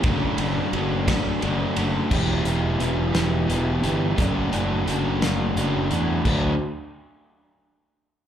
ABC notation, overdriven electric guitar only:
X:1
M:6/8
L:1/8
Q:3/8=58
K:D
V:1 name="Overdriven electric guitar"
[F,A,DF] [A,DF] [F,A,DF] [A,DF] [F,A,DF] [A,DF] | [E,B,EG] [B,EG] [E,B,EG] [B,EG] [E,B,EG] [B,EG] | [F,A,DF] [A,DF] [F,A,DF] [A,DF] [F,A,DF] [A,DF] | [D,F,A,D] z4 z |]